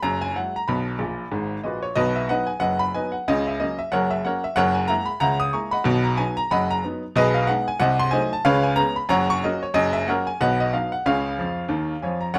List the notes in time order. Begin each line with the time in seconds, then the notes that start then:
0.03 F#1 F#2 A#5
0.21 G#5
0.36 F#3 G#3 E4 F#5
0.56 A#5
0.68 B1 B2 B5
0.99 A#1 A#2
1.32 G#1 G#2
1.64 A#1 A#2 F#4 B4 D#5
1.83 C#5
1.96 B1 B2 F#4 B4 D#5
2.16 E5
2.29 F#3 B3 D#4 B4 D#5 F#5
2.47 G#5
2.60 F#1 F#2 B4 D#5 F#5
2.79 B5
2.94 F#3 B3 D#4 B4 D#5 G#5
3.12 F#5
3.28 C#2 C#3 D#5
3.47 E5
3.60 F#3 A#3 C#4 D#5
3.79 E5
3.92 F#1 F#2 A#4 C#5 F#5
4.11 E5
4.25 F#3 A#3 C#4 A#4 C#5 F#5
4.44 E5
4.56 F#1 F#2 A#4 C#5 F#5
4.74 G#5
4.88 G#3 A#3 E4 E5 F#5 A#5
5.06 B5
5.20 C#2 C#3 E5 F#5 A#5
5.40 D#6
5.53 G#3 A#3 E4 G#5 A#5 C#6
5.71 D#5 F#5 B5
5.84 B1 B2
6.04 A#5
6.17 F#3 B3 D#4 G#5
6.37 A#5
6.51 F#1 F#2 D#5 F#5 B5
6.71 A#5
6.84 F#3 B3 D#4
7.16 B1 B2 G#4 B4 D#5
7.34 F5
7.47 G#3 B3 D#4 F#5
7.68 G#5
7.80 C2 C3 C5 D#5 F#5
8.00 C6
8.11 F#3 A3 D#4 C5 D#5 G#5
8.33 A5
8.45 C#2 C#3 B4 C#5 F5
8.63 G#5
8.76 G#3 B3 C#4 A#5
8.96 B5
9.09 F#1 F#2 C#5 F#5 A#5
9.30 C#6
9.44 F#3 A#3 C#4 F#4 A#4 D#5
9.63 C#5
9.74 F#1 F#2 D#5
9.93 E5
10.08 F#3 A#3 C#4 A#4 C#5 F#5
10.27 G#5
10.41 B1 B2 B4 D#5 F#5
10.60 D#5
10.73 F#3 B3 D#4 F5
10.92 F#5
11.06 C#2 C#3 G#4 C#5 F5
11.38 F2 F3
11.69 D#2 D#3
12.02 F2 F3 C#5 F5 G#5
12.21 A#5
12.34 F#1 F#2 A#4 C#5 F#5